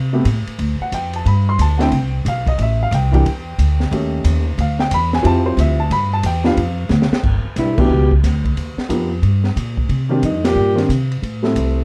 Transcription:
Already playing: C3
0.13 C3 A3 B3 G4
0.25 A2, kick, hi-hat pedal, ride
0.47 muted upright bass stroke, ride
0.58 D2, kick, ride
0.80 F#5, muted upright bass stroke
0.92 F2 G5, kick, hi-hat pedal, ride
1.13 A5, ride
1.25 G2 B5, kick, ride
1.49 C6
1.58 D2 A5, kick, hi-hat pedal, ride
1.78 D3 A3 C4 E4 F#5, snare, ride
1.82 G5
1.91 C2, kick, ride
2.25 B1 F5, kick, hi-hat pedal, ride
2.47 D#5, kick, ride
2.58 A1 D#5, kick, ride
2.62 E5
2.83 F5
2.91 C2 G5, kick, hi-hat pedal, ride
3.12 E3 A#3 D4 G4 G5, kick, ride
3.25 E2, kick, ride
3.58 D2, kick, hi-hat pedal, ride
3.80 snare
3.91 D#2 D#3 A3 C#4 G4, kick, ride
4.24 D#2, kick, hi-hat pedal, ride
4.58 D2 F5, kick, ride
4.79 G5, snare
4.91 E2 B5, kick, hi-hat pedal, ride
5.13 G#5, snare
5.22 F2 F3 C4 E4 G4, kick, ride
5.26 A5
5.46 C5
5.57 D2 E5, kick, hi-hat pedal, ride
5.80 A5
5.90 G2 B5, kick, ride
6.13 A5
6.23 E2 G5, kick, hi-hat pedal, ride
6.44 F3 B3 D4 G4 F5, snare
6.57 F2, kick, ride
6.89 D2, snare, hi-hat pedal
7.02 snare
7.11 muted upright bass stroke, snare
7.23 G1, kick, crash
7.45 muted upright bass stroke
7.56 B1 G2 E4, kick, snare, hi-hat pedal, ride
7.77 B2 E3 A3 B3 D4 G4, kick, crash
7.89 C#2
8.11 kick
8.23 D2, kick, snare, hi-hat pedal, ride
8.45 kick, ride
8.56 D#2, ride
8.77 muted upright bass stroke, snare
8.89 F2 F3 A#3 B3 D#4 G4, kick, hi-hat pedal, ride
9.22 G2, kick, ride
9.44 snare
9.56 A#2, kick, hi-hat pedal, ride
9.77 kick
9.89 C3, kick, ride
10.09 D#3 A#3 C4 D4 G4
10.22 F2 G2 D#4, kick, hi-hat pedal, ride
10.43 A#2 G4, snare, ride
10.55 G2
10.75 D#3 A#3 C4 D4 G4, snare, ride
10.89 C3, kick, hi-hat pedal, ride
11.12 ride
11.22 A2, kick, ride
11.42 G3 A3 C4 E4 A4, snare
11.55 C2, kick, hi-hat pedal, ride

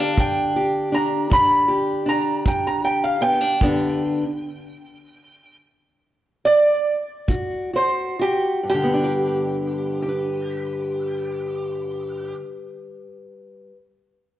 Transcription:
Already playing: D3 G4 F5
0.00 D4
0.16 G2, kick
0.20 G5
0.56 G4
0.92 D4 A#5
1.30 G2 D4 B5, kick
1.68 G4
2.06 D4 A#5
2.45 G2 G5, kick
2.67 A#5
2.84 G4 G5
3.04 F5
3.21 B3 G5
3.41 D4
3.61 G2 D3 B3 D4 G4, kick
6.45 D5
7.28 G#2 F#4, kick
7.73 F#4 C5
8.19 F#4 G4
8.63 G2
8.70 G4
8.74 D3
8.84 B3
8.94 D4
9.04 G4
10.02 G4
10.08 B4

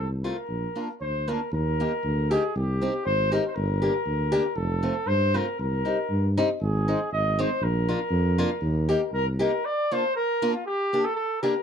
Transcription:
Already playing: C2
0.23 A3 C4 F4 A#4
0.49 A#1
0.76 A#3 D4 F4
1.01 D2 C5
1.28 A#3 D4 F4 A#4
1.52 D#2 A#4
1.80 A#3 D#4 G4
2.04 D2
2.31 A#3 D#4 G4 G#4
2.55 C2 G4
2.82 C4 D#4 G4
3.05 G#1 C5
3.32 C4 D#4 G4 A#4
3.47 C5
3.55 G1 A#4
3.82 A#3 D4 G4
4.06 D2
4.32 A#3 D4 G4
4.56 F1 A4
4.83 A3 C4 F4
5.07 G2 C5
5.34 A3 C4 F4 A#4
5.59 C2 A#4
5.85 G3 C4 D#4
6.10 G2
6.38 G3 C4 D#4
6.61 G#1 G#4
6.88 G#3 C4 D#4
7.12 G#1 D#5
7.39 G#3 C4 D#4 C5
7.61 A#1 A#4
7.89 A#3 D4 F4
8.11 F2
8.38 A#3 D4 F4
8.61 D#2
8.89 A#3 D#4 G4
9.12 C2 A#4
9.39 A#3 D#4 G4 A#4
9.65 D5
9.92 A#3 D4 F4 C5
10.16 A#4
10.42 A#3 D4 F4
10.54 F4
10.66 G4
10.93 A#3 D4 G4
11.05 A4
11.16 A4
11.42 A#3 D4 G4 A#4

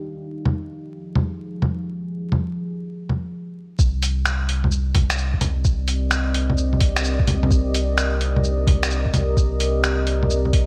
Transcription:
Already playing: D#4 G4 F5
0.07 F3 G#4
0.45 low bongo
1.15 low bongo
1.62 low bongo
2.32 low bongo
3.09 low bongo
3.79 C2 C4 G4 A#4 D5 D#5, kick, shaker
4.02 open hi-hat, shaker
4.25 finger snap, shaker
4.49 open hi-hat
4.64 low bongo
4.71 shaker
4.95 kick, open hi-hat, low bongo
5.10 finger snap, shaker
5.18 shaker
5.34 kick
5.41 open hi-hat, low bongo, shaker
5.64 kick, shaker
5.88 open hi-hat, shaker
6.11 finger snap, shaker
6.34 open hi-hat
6.50 low bongo
6.57 shaker
6.73 low bongo
6.81 kick, open hi-hat
6.97 finger snap, shaker
7.04 shaker
7.20 kick
7.27 open hi-hat, low bongo, shaker
7.43 low bongo
7.51 kick, shaker
7.74 open hi-hat, shaker
7.98 finger snap, shaker
8.21 open hi-hat
8.36 low bongo
8.44 shaker
8.67 kick, open hi-hat, low bongo
8.83 finger snap, shaker
8.91 shaker
9.06 kick
9.14 open hi-hat, low bongo, shaker
9.37 kick, shaker
9.60 open hi-hat, shaker
9.84 finger snap, shaker
10.07 open hi-hat
10.23 low bongo
10.30 shaker
10.45 low bongo
10.53 kick, open hi-hat

